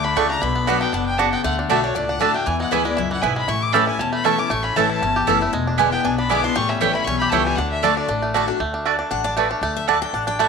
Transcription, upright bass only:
0.00 0.12 D2 medium
0.16 0.37 C#2 medium
0.42 0.82 B1 medium
0.93 1.34 F#1 medium
1.44 1.64 D2 loud
1.69 1.91 B1 medium
1.95 2.17 C#2 medium
2.20 2.42 D2 medium
2.47 2.67 E2 loud
2.72 2.94 D2 medium
2.98 3.19 C#2 medium
3.23 3.45 B1 medium
3.48 3.89 A1 loud
3.99 4.40 E1 medium
4.50 4.71 A1 loud
4.76 4.98 A1 medium
5.02 5.24 G1 medium
5.28 5.49 F#1 medium
5.53 5.94 E1 medium
6.04 6.45 B1 medium
6.56 6.76 A1 loud
6.81 7.03 A1 medium
7.06 7.28 B1 medium
7.32 7.54 C#2 medium
7.57 7.98 D2 loud
8.08 8.49 A1 medium
8.60 9.00 D2 loud
9.11 9.52 A1 medium
9.61 10.02 D2 loud
10.13 10.48 A1 medium

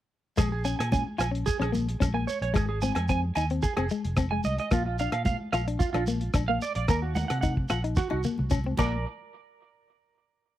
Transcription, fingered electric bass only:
0.39 0.74 A#1 medium
0.80 1.03 A#2 medium
1.19 1.42 A#1 medium
1.60 1.95 A#1 medium
2.02 2.24 A#1 medium
2.41 2.53 A#1 medium
2.55 2.90 G#1 medium
2.96 3.30 F2 medium
3.36 3.59 D#2 medium
3.77 3.88 F1 medium
4.05 4.39 F1 medium
4.46 4.57 C2 medium
4.72 5.06 A#1 loud
5.12 5.35 A#2 medium
5.53 5.76 A#1 medium
5.94 6.28 A#1 medium
6.34 6.57 A#1 medium
6.76 6.87 A#1 medium
6.89 7.24 D#2 medium
7.30 7.65 C3 medium
7.71 7.94 A#1 medium
8.12 8.23 C2 medium
8.39 8.74 C2 medium
8.79 9.04 A#1 medium

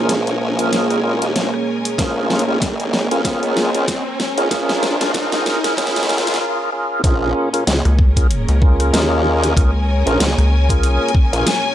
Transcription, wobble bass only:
0.00 0.39 A#1 loud
0.41 0.88 A#1 medium
0.91 1.19 G#1 loud
1.22 1.34 D#2 loud
1.35 1.51 A#1 loud
1.98 2.45 A#1 loud
2.48 3.08 G#1 loud
3.11 3.40 F2 medium
3.42 4.03 C#2 loud
4.38 4.49 C#2 loud
4.51 5.44 A#1 loud
5.77 6.39 C#2 loud
7.04 7.33 A#1 loud
7.67 7.82 C#2 loud
8.93 9.54 D#2 loud
10.07 10.18 A#1 loud
10.20 10.35 C#2 loud
11.33 11.44 A#1 loud

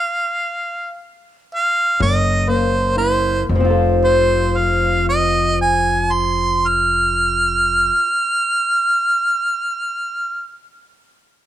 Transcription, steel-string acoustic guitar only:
2.00 3.43 F#2 medium
2.47 3.49 A#3 medium
2.97 3.42 E4 medium
3.49 7.92 F2 medium
3.55 7.98 F3 medium
3.60 8.03 C4 medium
3.65 8.07 F4 medium
3.70 8.13 A4 medium

